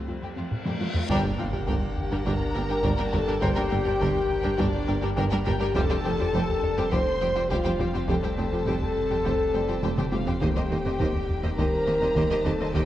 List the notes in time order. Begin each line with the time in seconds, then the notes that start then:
Already playing: G3 C4 G4 A4, reverse cymbal
0.06 F2 A3 C4 F4 C5
0.22 F2 F3 A3 G4 G5
0.36 F2 A3 C4 F4 F5
0.52 taiko low-mid
0.66 F2 F3 A3 G4 G5, taiko high
0.80 F2 A3 F4 F5, taiko high
0.95 F2 A3 C4 C5, taiko low
1.09 G1 G2 G3 D4 G4 A#4 G5, taiko, impact
1.24 G2 G3 A#3 D4 A#4 G5
1.38 G1 G2 G3 A#3 D4 F4 A#4 F5 G5
1.53 G2 G3 D4 G4 A#4 G5, taiko low
1.67 G1 G2 G3 D4 A#4 G5, taiko
1.82 taiko low
1.97 taiko low
2.11 G2 G3 D4 A#4 G5, taiko low
2.25 G1 G2 G3 D4 A#4 G5 A#5, taiko
2.55 G1 G2 G3 A#3 D4 A#4 G5
2.69 G2 G3 D4 G4 A#4 G5
2.83 G1 G2 G3 D4 A#4 D5 G5, taiko
2.98 G2 G3 A#3 D4 A#4 G5
3.12 G1 G2 G3 D4 G4 A4 A#4 G5 A5, taiko low
3.27 G2 G3 D4 A#4 G5
3.41 G1 G2 G3 D4 G4 A#4 C5 G5, taiko
3.56 G2 G3 A#3 D4 A#4 G5
3.70 G1 G2 G3 A#3 D4 A#4 G5
3.84 G2 G3 D4 G4 A#4 G5, taiko low
4.00 G1 G2 G3 D4 A#4 G5, taiko
4.15 taiko low
4.30 taiko low
4.43 G2 G3 D4 A#4 G5, taiko low
4.58 G1 G2 G3 D4 A#4 D5 G5, taiko
4.87 G1 G2 G3 A#3 D4 A#4 G5
5.02 G2 G3 D4 G4 A#4 G5
5.16 G1 G2 G3 D4 G4 A#4 G5, taiko
5.31 G2 G3 A#3 D4 A#4 G5
5.45 G1 G2 G3 D4 G4 A#4 G5, taiko low
5.60 G2 G3 D4 A#4 G5
5.75 F1 F2 F3 G3 C4 G4 A4 C5 G5 A5, taiko
5.90 F2 G3 A3 G4 C5 G5
6.04 F1 F2 G3 A3 G4 C5 G5
6.18 F2 G3 F4 G4 C5 G5, taiko low
6.33 F1 F2 F3 G3 G4 C5 G5, taiko
6.49 taiko low
6.63 D4 D5, taiko low
6.77 F2 G3 C4 G4 C5 G5, taiko low
6.91 F1 F2 F3 G3 G4 C5 G5 C6, taiko
7.20 F1 F2 G3 A3 G4 C5 G5
7.35 F2 G3 F4 G4 C5 G5
7.50 F1 F2 F3 G3 F4 G4 C5 F5 G5, taiko
7.65 F2 G3 A3 G4 C5 G5
7.79 F1 F2 G3 C4 F4 G4 C5 G5, taiko low
7.93 F2 G3 C4 G4 C5 G5
8.08 F1 F2 F3 G3 G4 A4 C5 G5 A5, taiko
8.23 F2 G3 A3 G4 C5 G5
8.37 F1 F2 G3 A3 G4 C5 G5
8.52 F2 G3 F4 G4 C5 G5, taiko low
8.66 F1 F2 F3 G3 G4 C5 G5, taiko
8.81 taiko low
8.96 taiko low
9.10 F2 G3 C4 G4 C5 G5, taiko low
9.24 F1 F2 F3 G3 G4 C5 G5, taiko
9.53 F1 F2 G3 A3 G4 C5 D5 G5
9.68 F2 G3 F4 G4 C5 G5
9.82 F1 F2 F3 G3 G4 C5 G5, taiko high
9.97 F2 G3 A3 G4 C5 G5, taiko mid
10.11 F1 F2 G3 F4 G4 C5 F5 G5, taiko high
10.26 F2 G3 C4 G4 C5 G5, taiko low
10.41 D#1 D#2 D#3 G3 A3 A#3 C4 D#4 G4 C5 D#5 G5, taiko
10.55 D#2 G3 A#3 G4 C5 D#5
10.70 D#2 G3 A#3 G4 C5 D#5
10.85 D#2 A#3 C4 G4 C5 D#5, taiko low
10.99 D#2 D#3 A#3 G4 C5 D#5, taiko
11.14 taiko low
11.29 taiko low
11.43 D#2 A#3 G4 C5 D#5, taiko low
11.57 D#2 D#3 G3 A#3 G4 A#4 C5 D#5 A#5, taiko
11.87 D#2 G3 A#3 G4 C5 D#5
12.01 D#2 A#3 C4 G4 C5 D#5
12.16 D#2 D#3 A#3 G4 C5 D#5, taiko
12.30 D#2 G3 A#3 G4 C5 D#5
12.45 D#2 A#3 C4 G4 A4 C5 D#5 A5, taiko low
12.59 D#2 A#3 G4 C5 D#5
12.74 D#2 D#3 A#3 G4 C5 D#5 G5, taiko